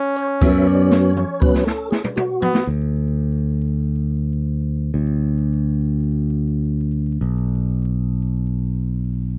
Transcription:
0.00 2.11 C#4 loud
0.16 0.28 C#5 loud
0.16 closed hi-hat medium
0.41 1.23 F#2 loud
0.41 1.13 F#3 medium
0.41 1.13 B3 medium
0.41 1.14 C#4 medium
0.41 0.67 E5 loud
0.41 kick loud
0.41 closed hi-hat medium
0.41 shaker medium
0.66 0.90 D5 loud
0.66 closed hi-hat medium
0.90 1.43 C#5 loud
0.90 snare loud
0.90 closed hi-hat medium
1.17 high tom medium
1.17 shaker soft
1.40 1.64 F#3 medium
1.40 1.64 B3 soft
1.40 1.65 C#4 medium
1.40 1.64 B4 loud
1.40 kick loud
1.54 snare medium
1.65 1.89 A4 medium
1.65 snare medium
1.65 shaker soft
1.91 2.02 G#4 medium
1.91 snare medium
2.04 mid tom medium
2.16 2.63 F#4 loud
2.16 mid tom medium
2.42 2.66 B3 loud
2.42 floor tom medium
2.42 shaker soft
2.55 snare loud
2.67 4.90 D2 medium
4.94 7.17 D2 medium
7.21 9.39 B1 medium

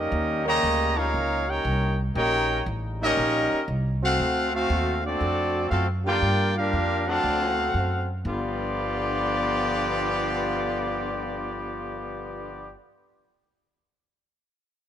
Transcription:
0.00 0.10 F2 medium
0.00 0.44 G3 medium
0.00 0.44 A#3 medium
0.00 0.48 C#4 medium
0.00 0.47 D#4 medium
0.00 0.46 G4 medium
0.00 0.48 A#4 medium
0.00 0.46 D#5 loud
0.12 0.61 D#2 loud
0.45 0.94 C#3 loud
0.45 0.94 G3 medium
0.45 0.94 A#3 loud
0.45 0.94 G4 loud
0.45 0.95 C#5 loud
0.45 0.95 D#5 loud
0.45 0.94 A#5 loud
0.63 1.12 D2 loud
0.96 1.09 C#3 medium
0.96 1.09 G3 medium
0.96 1.46 A#3 medium
0.96 1.09 A#3 medium
0.96 1.46 C#4 medium
0.96 1.47 D#4 medium
0.96 1.09 D#4 loud
0.96 1.48 F4 medium
0.96 1.48 A#4 medium
0.96 1.47 C#5 medium
0.96 1.48 F5 loud
1.14 1.63 C#2 medium
1.47 1.99 A#3 medium
1.47 1.99 C#4 medium
1.47 2.00 D#4 medium
1.47 1.99 G4 medium
1.47 2.00 A#4 medium
1.47 2.00 C#5 medium
1.47 2.00 G5 medium
1.65 2.14 C2 loud
2.15 2.65 A#1 loud
2.15 3.59 C#3 medium
2.15 3.59 G3 medium
2.15 2.63 A#3 medium
2.15 3.59 A#3 medium
2.15 2.63 C#4 loud
2.15 2.63 D#4 loud
2.15 3.59 D#4 loud
2.15 2.63 G4 loud
2.15 2.63 A#4 loud
2.15 2.63 C#5 loud
2.15 2.63 G5 loud
2.66 3.16 A1 loud
3.02 3.64 G3 medium
3.02 3.64 A#3 medium
3.02 3.65 C#4 loud
3.02 3.64 D#4 medium
3.02 3.65 G4 loud
3.02 3.65 A#4 loud
3.02 3.65 D#5 loud
3.17 3.50 A#1 medium
3.53 muted upright bass stroke soft
3.68 4.17 C2 loud
4.03 4.50 A3 medium
4.03 4.50 C4 medium
4.03 4.51 C4 medium
4.03 4.50 F#4 medium
4.03 4.51 A4 medium
4.03 4.51 F5 medium
4.03 4.51 F#5 loud
4.19 4.69 D2 medium
4.53 5.01 A3 medium
4.53 5.01 C4 medium
4.53 5.01 C4 loud
4.53 5.01 F#4 medium
4.53 5.01 F#4 loud
4.53 5.01 A4 medium
4.53 5.01 F5 loud
4.70 5.19 D#2 loud
5.03 5.67 A3 medium
5.03 5.68 C4 medium
5.03 5.67 D4 medium
5.03 5.67 F#4 medium
5.03 5.68 F#4 medium
5.03 5.68 A4 medium
5.03 5.68 D5 medium
5.21 5.70 F2 medium
5.69 6.21 F#2 medium
5.69 5.85 A3 medium
5.69 5.85 C4 medium
5.69 5.86 C4 medium
5.69 5.86 F4 medium
5.69 5.87 F#4 medium
5.69 5.87 A4 medium
5.69 5.86 F5 loud
6.04 6.17 D3 loud
6.04 6.17 G3 loud
6.04 6.53 A#3 loud
6.04 6.17 A#3 loud
6.04 6.53 D4 medium
6.04 6.53 F4 loud
6.04 6.17 F4 loud
6.04 6.53 G4 loud
6.04 6.53 A#4 loud
6.04 6.54 D5 loud
6.04 6.54 G5 loud
6.22 6.71 G2 medium
6.55 7.07 A#3 medium
6.55 7.07 D4 loud
6.55 7.09 D4 medium
6.55 7.07 F4 medium
6.55 7.08 G4 medium
6.55 7.08 A#4 medium
6.55 7.07 F5 loud
6.73 7.22 F2 medium
7.06 7.71 D3 loud
7.06 7.71 F#3 loud
7.06 8.09 A3 medium
7.06 8.09 C4 medium
7.06 7.72 C4 loud
7.06 8.10 C4 medium
7.06 7.72 D4 loud
7.06 8.09 F#4 medium
7.06 8.10 A4 medium
7.06 8.10 F5 medium
7.06 8.10 F#5 loud
7.24 7.73 D2 medium
7.74 8.24 F#2 medium
8.25 12.73 G1 loud
8.25 12.73 G2 loud
8.25 12.73 D3 loud
8.25 12.78 D3 loud
8.25 12.73 F3 loud
8.25 12.78 G3 medium
8.25 12.73 B3 loud
8.25 12.78 B3 medium
8.25 12.75 B3 medium
8.25 12.78 F4 loud
8.25 12.76 F4 medium
8.25 12.75 G4 medium
8.25 12.75 D5 loud

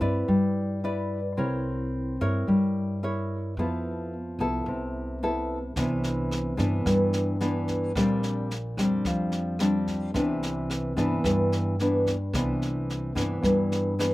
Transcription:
0.00 0.26 G2 medium
0.00 0.26 C4 medium
0.00 0.79 E4 medium
0.00 0.79 B4 medium
0.00 0.79 D5 medium
0.28 1.34 G2 medium
0.28 1.35 G3 medium
0.84 1.19 E4 soft
0.84 1.19 B4 soft
0.84 1.19 D5 medium
1.37 2.16 C2 medium
1.37 2.45 C4 medium
1.37 2.16 E4 soft
1.37 2.16 A#4 medium
1.37 2.16 C#5 medium
2.21 2.46 G2 medium
2.21 2.99 E4 medium
2.21 2.98 A#4 medium
2.21 2.99 C#5 medium
2.47 3.54 G2 medium
2.47 3.54 G3 medium
3.03 3.53 E4 soft
3.03 3.53 A#4 soft
3.03 3.54 C#5 medium
3.57 4.35 F2 medium
3.57 4.65 F3 soft
3.57 4.12 B3 medium
3.57 4.13 E4 medium
3.57 4.13 A4 medium
4.39 4.65 C2 medium
4.39 5.18 B3 medium
4.39 5.18 E4 medium
4.39 5.18 A4 medium
4.66 5.72 C2 medium
4.66 5.74 C3 soft
5.23 5.58 B3 medium
5.23 5.58 E4 soft
5.23 5.58 A4 medium
5.76 6.54 C2 medium
5.76 6.83 C3 medium
5.76 6.54 E3 medium
5.76 6.54 B3 medium
5.76 6.55 D4 medium
5.76 kick medium
5.76 snare soft
6.04 snare soft
6.31 cross-stick soft
6.31 snare soft
6.57 6.84 G2 medium
6.57 7.36 E3 medium
6.57 7.36 B3 medium
6.57 7.36 D4 medium
6.57 kick soft
6.57 snare soft
6.86 7.91 G2 medium
6.86 7.93 G2 soft
6.86 kick medium
6.86 cross-stick medium
6.86 snare soft
7.13 snare soft
7.41 7.91 E3 soft
7.41 7.91 B3 medium
7.41 7.91 D4 medium
7.41 snare soft
7.68 kick soft
7.68 snare soft
7.95 8.74 A#1 medium
7.95 9.03 A#2 medium
7.95 8.50 G3 medium
7.95 8.51 C4 medium
7.95 8.51 D4 medium
7.95 kick medium
7.95 cross-stick medium
7.95 snare soft
8.23 snare soft
8.51 snare soft
8.77 9.03 F2 medium
8.77 9.55 G3 medium
8.77 9.56 C4 medium
8.77 9.56 D4 medium
8.77 kick soft
8.77 cross-stick medium
8.77 snare soft
9.05 10.10 F2 medium
9.05 10.13 F3 medium
9.05 kick medium
9.05 snare soft
9.32 snare soft
9.59 10.10 G3 medium
9.59 10.11 C4 soft
9.59 10.11 D4 medium
9.59 cross-stick medium
9.59 snare soft
9.87 kick soft
9.87 snare soft
10.14 10.92 C2 medium
10.14 11.21 C3 medium
10.14 10.92 E3 medium
10.14 10.92 B3 soft
10.14 10.93 D4 medium
10.14 kick medium
10.14 snare soft
10.43 snare soft
10.70 cross-stick soft
10.70 snare soft
10.97 11.22 G2 medium
10.97 11.75 E3 medium
10.97 11.75 B3 medium
10.97 11.75 D4 medium
10.97 kick soft
10.97 snare soft
11.24 12.30 G2 medium
11.24 12.31 G2 soft
11.24 kick medium
11.24 cross-stick medium
11.24 snare soft
11.52 snare soft
11.79 12.15 E3 soft
11.79 12.15 B3 soft
11.79 12.15 D4 medium
11.79 snare soft
12.06 kick soft
12.06 snare soft
12.33 13.12 C2 medium
12.33 13.41 C3 soft
12.33 13.12 E3 soft
12.33 13.12 B3 soft
12.33 13.12 D4 medium
12.33 kick medium
12.33 cross-stick medium
12.33 snare soft
12.62 snare soft
12.90 snare soft
13.15 13.41 G2 medium
13.15 13.93 E3 medium
13.15 13.93 B3 medium
13.15 13.94 D4 medium
13.15 kick soft
13.15 cross-stick medium
13.15 snare soft
13.42 14.14 G2 medium
13.42 kick medium
13.42 snare soft
13.72 snare soft
13.99 14.14 E3 medium
13.99 14.14 B3 medium
13.99 14.14 D4 medium
13.99 cross-stick medium
13.99 snare soft

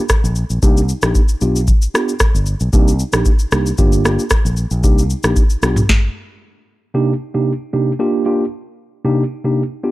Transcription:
0.09 kick medium
0.09 cross-stick loud
0.09 shaker medium
0.24 0.43 A#1 medium
0.24 shaker medium
0.36 shaker soft
0.50 0.59 A#1 medium
0.50 shaker soft
0.63 0.91 C2 loud
0.63 0.80 A#3 medium
0.63 0.81 D4 medium
0.63 0.81 D#4 medium
0.63 0.81 G4 loud
0.63 kick loud
0.63 shaker medium
0.77 shaker medium
0.89 shaker medium
1.02 1.12 A#1 medium
1.02 1.20 A#3 medium
1.02 1.20 D4 medium
1.02 1.20 D#4 medium
1.02 1.20 G4 medium
1.02 cross-stick medium
1.02 shaker medium
1.15 kick loud
1.15 shaker medium
1.28 shaker soft
1.41 1.71 B1 medium
1.41 1.59 B3 medium
1.41 1.59 D4 medium
1.41 1.60 F4 medium
1.41 1.60 G4 medium
1.41 shaker soft
1.56 shaker medium
1.68 kick loud
1.68 shaker medium
1.82 shaker medium
1.94 2.12 B3 medium
1.94 2.12 D4 medium
1.94 2.12 F4 medium
1.94 2.12 G4 medium
1.94 cross-stick medium
1.94 shaker soft
2.09 shaker medium
2.20 kick medium
2.20 cross-stick loud
2.20 shaker medium
2.35 2.53 G1 medium
2.35 shaker medium
2.46 shaker soft
2.60 2.70 B1 medium
2.60 shaker soft
2.73 3.02 C2 loud
2.73 2.91 A#3 medium
2.73 2.91 D4 medium
2.73 2.91 D#4 medium
2.73 2.91 G4 loud
2.73 kick loud
2.73 shaker medium
2.88 shaker medium
2.99 shaker medium
3.13 3.22 A#1 medium
3.13 3.30 A#3 medium
3.13 3.30 D4 medium
3.13 3.30 D#4 medium
3.13 3.30 G4 medium
3.13 cross-stick medium
3.13 shaker medium
3.25 kick loud
3.25 shaker medium
3.39 shaker soft
3.52 3.71 C2 medium
3.52 3.70 A#3 medium
3.52 3.70 D4 medium
3.52 3.70 D#4 medium
3.52 3.70 G4 medium
3.52 cross-stick medium
3.52 shaker soft
3.66 shaker medium
3.78 4.16 G1 loud
3.78 4.03 A#3 medium
3.78 4.03 D4 medium
3.78 4.03 F4 medium
3.78 4.03 G4 loud
3.78 kick loud
3.78 shaker medium
3.92 shaker medium
4.05 4.23 A#3 medium
4.05 4.23 D4 medium
4.05 4.23 F4 medium
4.05 4.23 G4 medium
4.05 cross-stick medium
4.05 shaker soft
4.19 shaker medium
4.30 kick medium
4.30 cross-stick loud
4.30 shaker medium
4.45 4.64 A#1 medium
4.45 shaker medium
4.57 shaker soft
4.71 4.84 A#1 medium
4.71 shaker soft
4.84 5.13 C2 loud
4.84 5.02 A#3 medium
4.84 5.02 D4 medium
4.84 5.02 D#4 medium
4.84 5.02 G4 loud
4.84 kick loud
4.84 shaker medium
4.98 shaker medium
5.10 shaker medium
5.23 5.33 A#1 medium
5.23 5.41 A#3 medium
5.23 5.41 D4 medium
5.23 5.41 D#4 medium
5.23 5.41 G4 medium
5.23 cross-stick medium
5.23 shaker medium
5.36 kick loud
5.36 shaker medium
5.50 shaker soft
5.62 5.82 B1 medium
5.62 5.81 B3 medium
5.62 5.81 D4 medium
5.62 5.81 F4 medium
5.62 5.81 G4 medium
5.62 cross-stick medium
5.62 shaker medium
5.76 mid tom loud
5.76 shaker medium
5.89 kick loud
5.89 snare medium
6.94 7.12 C3 medium
6.94 7.12 A#3 medium
6.94 7.12 D4 medium
6.94 7.12 D#4 medium
6.94 7.12 G4 loud
7.34 7.51 C3 medium
7.34 7.51 A#3 medium
7.34 7.52 D4 medium
7.34 7.52 D#4 medium
7.34 7.52 G4 medium
7.73 7.91 C3 medium
7.73 7.91 A#3 medium
7.73 7.91 D4 medium
7.73 7.91 D#4 medium
7.73 7.91 G4 medium
7.99 8.24 A#3 medium
7.99 8.24 D4 medium
7.99 8.24 F4 medium
7.99 8.24 G4 loud
8.26 8.44 A#3 medium
8.26 8.44 D4 medium
8.26 8.44 F4 medium
8.26 8.44 G4 medium
9.04 9.22 C3 medium
9.04 9.23 A#3 medium
9.04 9.23 D4 medium
9.04 9.23 D#4 medium
9.04 9.23 G4 loud
9.44 9.62 C3 medium
9.44 9.62 A#3 medium
9.44 9.62 D4 medium
9.44 9.62 D#4 medium
9.44 9.62 G4 medium
9.83 9.91 B3 medium
9.83 9.91 D4 medium
9.83 9.91 F4 medium
9.83 9.91 G4 medium

